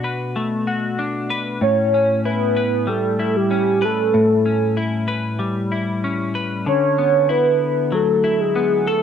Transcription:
0.00 1.61 B2 medium
0.00 0.36 A3 medium
0.00 0.97 D4 medium
0.00 0.66 F#4 medium
0.04 1.30 B4 medium
0.36 2.60 A3 medium
0.67 1.68 F#4 medium
0.99 1.68 D4 medium
1.30 1.97 B4 medium
1.61 4.13 A2 medium
1.61 2.21 C#5 loud
1.94 3.49 C#4 medium
2.25 3.19 E4 medium
2.25 2.90 B4 loud
2.57 3.81 B4 medium
2.87 5.38 G3 medium
2.87 3.38 A4 loud
3.19 4.77 E4 medium
3.37 3.86 G4 medium
3.51 4.44 C#4 soft
3.82 4.78 A4 medium
3.82 5.07 B4 medium
4.14 6.66 A2 medium
4.46 6.03 C#4 medium
4.77 5.71 E4 medium
5.08 6.35 B4 medium
5.39 6.72 G3 medium
5.72 7.29 E4 medium
6.04 6.73 C#4 medium
6.35 8.87 B4 medium
6.66 9.03 D3 medium
6.66 7.32 C#5 loud
6.98 8.55 B3 soft
7.29 8.23 E4 medium
7.29 7.96 B4 loud
7.92 9.03 F#3 medium
7.92 8.42 A4 medium
8.24 9.03 E4 medium
8.40 8.89 G#4 medium
8.56 9.03 B3 medium
8.87 9.03 A4 medium

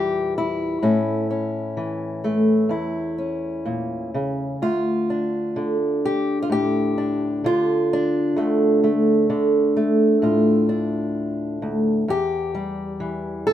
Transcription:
0.00 0.78 E2 medium
0.00 0.78 A#2 medium
0.00 0.78 E3 soft
0.00 0.85 G3 soft
0.00 0.37 G4 medium
0.38 2.69 E4 medium
0.82 2.71 A2 medium
0.82 1.29 C#4 soft
1.30 3.17 C#4 soft
1.77 4.55 E3 soft
2.24 5.74 A3 soft
2.69 4.54 E2 medium
2.69 4.61 E4 soft
3.18 4.55 C#4 soft
3.66 4.14 A#2 soft
4.14 4.62 C#3 soft
4.62 8.35 D2 medium
4.62 6.04 F4 medium
5.10 6.97 D4 soft
5.56 7.43 D3 soft
6.05 6.42 G4 medium
6.42 6.50 F4 medium
6.50 7.43 A2 soft
6.50 7.45 G4 medium
6.98 7.91 D4 soft
7.44 9.28 D3 soft
7.44 8.84 F4 medium
7.93 10.68 D4 medium
8.36 11.61 D2 medium
8.36 8.82 A3 soft
8.84 9.75 A3 soft
9.30 12.08 D3 soft
9.77 12.03 A3 soft
10.22 12.08 A2 medium
10.22 12.03 F4 soft
10.69 12.03 D4 soft
11.62 12.08 D2 medium
12.08 13.53 E2 medium
12.08 13.46 G4 medium
12.55 13.53 G3 soft
13.00 13.53 E3 soft
13.47 13.53 A4 medium

